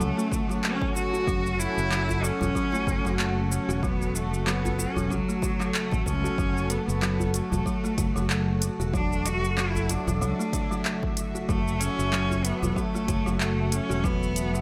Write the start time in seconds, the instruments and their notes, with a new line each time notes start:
Already playing: cello A3, ambient pad C#4 F#4 A4 F#5
0.00 fretless electric bass C#2, kalimba F#3, shaker
0.17 kalimba A3, shaker
0.32 kalimba C#3, kick, djembe slap, djembe tone, shaker
0.49 kalimba F#3, shaker
0.64 cello C#4, clap, shaker
0.82 kick, djembe slap
0.95 cello F#4, djembe slap, shaker
1.13 kalimba F#4, shaker
1.27 fretless electric bass F#1, kalimba F#3, kick, shaker
1.46 shaker
1.60 cello E4, shaker
1.78 fretless electric bass F#1, shaker
1.91 kalimba F#3, clap, shaker
2.09 djembe bass, shaker
2.24 cello C#4, shaker
2.41 fretless electric bass E1, kalimba F#3, djembe slap, djembe tone, djembe bass, shaker
2.55 kalimba F#3, kick, shaker
2.72 kalimba A3, djembe tone, shaker
2.87 fretless electric bass F#1, kalimba C#3, kick, shaker
3.05 fretless electric bass F#1, kalimba F#3, shaker
3.19 cello A3, clap, shaker
3.51 cello C#4, djembe tone, shaker
3.69 fretless electric bass E1, kalimba F#4, shaker
3.83 kalimba F#3, cello B3, kick, shaker
4.02 shaker
4.15 cello A3, shaker
4.33 fretless electric bass F#1, shaker
4.47 kalimba F#3, cello B3, clap, shaker
4.65 djembe slap, djembe bass, shaker
4.79 cello C#4, djembe bass, shaker
4.96 fretless electric bass E1, kalimba F#3, djembe slap, djembe bass, shaker
5.10 fretless electric bass C#2, kalimba F#3, cello F#3, kick, shaker
5.28 kalimba A3, shaker
5.42 kalimba C#3, kick, djembe slap, djembe tone, shaker
5.60 kalimba F#3, clap, shaker
5.74 cello A3, clap, shaker
5.91 fretless electric bass A1, kick, djembe slap, shaker
6.06 fretless electric bass C#2, cello C#4, kick, djembe slap, shaker
6.24 kalimba F#4, shaker
6.38 fretless electric bass F#1, kalimba F#3, kick, shaker
6.57 shaker
6.70 cello B3, closed hi-hat, shaker
6.78 cello A3
6.86 fretless electric bass F#1, cello B3, shaker
7.02 kalimba F#3, clap, shaker
7.20 djembe bass, shaker
7.34 cello A3, closed hi-hat, shaker
7.52 fretless electric bass E1, kalimba F#3, djembe slap, djembe tone, djembe bass, shaker
7.66 kalimba F#3, kick, shaker
7.84 kalimba A3, ambient pad E5, djembe tone, shaker
7.98 fretless electric bass F#1, kalimba C#3, kick, closed hi-hat, shaker
8.16 fretless electric bass F#1, kalimba F#3, shaker
8.30 clap, shaker
8.62 closed hi-hat, djembe tone, shaker
8.80 fretless electric bass E1, kalimba F#4, shaker
8.93 kalimba F#3, cello D4, kick, shaker
9.13 shaker
9.26 cello F#4, closed hi-hat, shaker
9.43 fretless electric bass F#1, shaker
9.57 kalimba F#3, cello E4, clap, shaker
9.75 djembe slap, djembe bass, shaker
9.89 cello D4, closed hi-hat, djembe bass, shaker
10.07 fretless electric bass E1, kalimba F#3, djembe slap, djembe bass, shaker
10.21 fretless electric bass C#2, kalimba F#3, cello D4, shaker
10.39 kalimba A3, shaker
10.53 kalimba C#3, kick, closed hi-hat, djembe slap, djembe tone, shaker
10.71 kalimba F#3, shaker
10.85 clap, shaker
11.03 kick, djembe slap
11.17 closed hi-hat, djembe slap, shaker
11.35 kalimba F#4, shaker
11.49 fretless electric bass F#1, kalimba F#3, cello A3, kick, shaker
11.68 shaker
11.80 cello C#4, closed hi-hat, shaker
11.99 fretless electric bass F#1, shaker
12.13 kalimba F#3, clap, shaker
12.31 djembe bass, shaker
12.44 cello B3, closed hi-hat, shaker
12.62 fretless electric bass E1, kalimba F#3, djembe slap, djembe tone, djembe bass, shaker
12.76 kalimba F#3, cello A3, kick, shaker
12.94 kalimba A3, djembe tone, shaker
13.08 fretless electric bass F#1, kalimba C#3, kick, closed hi-hat, shaker
13.26 fretless electric bass F#1, kalimba F#3, shaker
13.40 cello A3, clap, shaker
13.72 cello C#4, closed hi-hat, djembe tone, shaker
13.90 fretless electric bass E1, kalimba F#4, shaker
14.04 kalimba F#3, cello B3, kick, shaker
14.23 shaker
14.36 closed hi-hat, shaker
14.53 fretless electric bass F#1, djembe tone, shaker